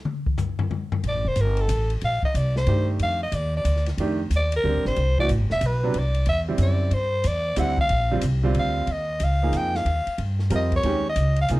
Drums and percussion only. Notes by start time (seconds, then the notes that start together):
0.05 mid tom
0.26 kick
0.38 floor tom, hi-hat pedal
0.59 floor tom
0.71 floor tom
0.92 floor tom
1.04 ride
1.36 hi-hat pedal, ride
1.57 ride
1.69 hi-hat pedal, ride
1.90 ride
2.01 ride
2.23 kick
2.35 hi-hat pedal, ride
2.56 snare
2.66 ride
2.99 ride
3.32 hi-hat pedal, ride
3.65 hi-hat pedal, ride
3.76 snare
3.86 snare, ride
3.98 ride
4.31 hi-hat pedal, ride
4.52 ride
4.85 snare
4.96 ride
5.18 kick
5.29 hi-hat pedal, ride
5.50 snare
5.61 hi-hat pedal, ride
5.94 ride
6.14 ride
6.26 ride
6.58 hi-hat pedal, ride
6.91 ride
7.24 hi-hat pedal, ride
7.56 hi-hat pedal, ride
7.78 kick
7.89 ride
8.21 hi-hat pedal, ride
8.54 ride
8.87 ride
9.20 hi-hat pedal, ride
9.53 hi-hat pedal, ride
9.75 snare
9.86 ride
10.07 ride
10.18 ride
10.39 snare
10.50 hi-hat pedal, ride
10.72 kick, ride
10.83 ride
11.16 hi-hat pedal, ride
11.36 ride
11.48 hi-hat pedal, ride